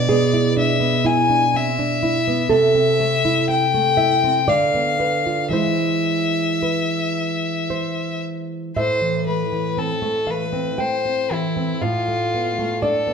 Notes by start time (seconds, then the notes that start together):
Already playing: B2 D4 D5
0.09 B3 G#4
0.33 E4
0.57 D4 E5
0.80 B3
1.05 E4 G#5
1.30 D4
1.54 C4 E5
1.79 D4
2.03 E4
2.28 B3
2.49 C3 A4 E5
2.75 C4
3.00 A3
3.25 E4
3.49 C4 G5
3.74 A3
3.97 E4 E5
4.24 C4
4.48 D3 D5 F5
4.74 B3
5.00 B4
5.26 F4
5.49 E3 G#3 E4 C5 E5
6.63 B4
7.70 C5
8.76 A2 C5 E5
9.01 E3
9.27 A3 B4
9.52 E3
9.77 C4 A4
10.02 A3
10.27 E3 B4 F5
10.53 C4
10.78 A3 C5 G5
11.05 C4
11.31 E3 E4
11.56 C4
11.81 A2 F4 F5
12.08 A3
12.34 B3
12.59 A3
12.82 D4 A4 D5
13.07 B3